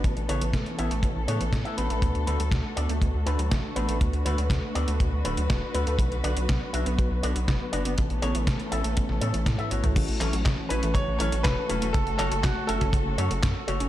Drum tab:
CC |----------------|----------------|----------------|----------------|
HH |xxxxxxxxx-xxxxxx|xxxxx-xxx-xxx-xx|xxxxx-xxx-xxx-xx|xxxxx-xxx-xxx-xx|
CP |----------------|----------------|----------------|----------------|
SD |----o-------o---|----o-------o---|----o-------o---|----o-------o---|
T1 |----------------|----------------|----------------|----------------|
T2 |----------------|----------------|----------------|----------------|
BD |o---o---o---o---|o---o---o---o---|o---o---o---o---|o---o---o---o---|

CC |----------------|x---------------|----------------|
HH |xxxxxxxxx-xxxxxx|xxxxx-xxx-xxx-xx|xxxxx-xxx-xxx-xx|
CP |----------------|--x-x-------x---|--x-x-------x---|
SD |----o----o--o---|----o-------o---|----o-------o---|
T1 |------------oo--|----------------|----------------|
T2 |---------------o|----------------|----------------|
BD |o---o---o---o---|o---o---o---o---|o---o--oo---o---|